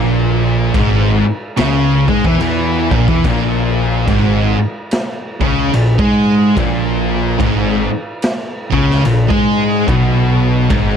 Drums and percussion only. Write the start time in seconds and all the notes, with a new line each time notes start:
0.74 kick, crash
1.57 snare, crash
2.08 kick
2.24 kick
2.40 crash
2.91 kick
3.08 kick
3.24 kick, crash
4.08 kick, crash
4.91 snare, crash
5.41 kick
5.74 crash
5.99 kick
6.57 kick, crash
7.40 kick, crash
8.22 snare, crash
8.72 kick
8.91 snare
9.05 crash
9.30 kick
9.88 kick, crash
10.70 kick, crash